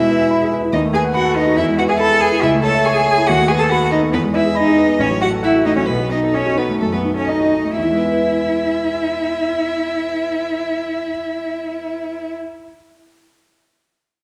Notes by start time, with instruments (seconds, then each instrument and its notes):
Already playing: grand piano E2 B2 E4 G#4 B4 E5 B5, cello E4, violin E5
0.00 grand piano G#3
0.10 grand piano B4
0.21 grand piano E5
0.30 grand piano B5
0.42 grand piano G#4
0.52 grand piano B4
0.62 grand piano E4
0.73 grand piano D#2, cello D#4, violin D#5
0.84 grand piano A3
0.93 cello G#4, grand piano B4, violin G#5
1.04 grand piano F#5
1.14 cello F#4, violin F#5, grand piano B5
1.25 grand piano A4
1.35 cello D#4, grand piano B4, violin D#5
1.47 grand piano F#4
1.56 grand piano E2, cello E4, violin E5
1.68 grand piano G#3
1.79 cello F#4, grand piano B4, violin F#5
1.89 cello G#4, grand piano E5, violin G#5
1.99 cello A4, violin A5, grand piano B5
2.11 grand piano G#4
2.20 cello G#4, grand piano B4, violin G#5
2.32 grand piano E4
2.42 grand piano C#2, cello E4, violin E5
2.54 grand piano A3
2.63 cello A4, grand piano C#5, violin A5
2.75 grand piano E5
2.85 cello G#4, violin G#5, grand piano C#6
2.97 grand piano A4
3.06 grand piano C#5
3.18 grand piano E4
3.27 grand piano D#2, cello F#4, violin F#5
3.39 grand piano A3
3.48 cello G#4, grand piano B4, violin G#5
3.59 cello A4, grand piano A4, violin A5
3.70 cello F#4, violin F#5, grand piano B5
3.83 grand piano A4
3.92 cello D#4, grand piano B4, violin D#5
4.02 grand piano B3
4.12 grand piano E2, cello B3, violin B4
4.23 grand piano G#3
4.34 cello E4, grand piano B4, violin E5
4.44 grand piano G#4
4.55 cello D#4, violin D#5, grand piano B5
4.66 grand piano G#4
4.77 grand piano B4
4.88 grand piano B3
4.99 grand piano A1, cello C#4, violin C#5
5.10 grand piano F#3
5.21 grand piano F#4, cello F#4, violin F#5
5.31 grand piano A4
5.43 cello E4, violin E5, grand piano F#5
5.55 grand piano F#4
5.65 grand piano A3, cello D#4, violin D#5
5.76 grand piano F#3, cello C#4, violin C#5
5.87 grand piano B1, cello B3, violin B4
6.00 grand piano F#3
6.10 cello D#4, grand piano D#4, violin D#5
6.23 grand piano A4
6.33 cello C#4, violin C#5, grand piano D#5
6.45 grand piano F#4
6.56 cello B3, grand piano D#4, violin B4
6.69 grand piano A3
6.81 grand piano F#2, cello A3, violin A4
6.92 grand piano F#3, cello B3, violin B4
7.05 grand piano D#4
7.15 cello C#4, grand piano A4, violin C#5
7.28 cello D#4, violin D#5, grand piano D#5
7.40 grand piano F#4
7.52 grand piano D#4
7.65 grand piano A3
7.77 grand piano E2, cello E4, violin E5
7.84 grand piano E3
7.91 grand piano G#3
7.97 grand piano B3
8.04 grand piano E4
8.12 grand piano B4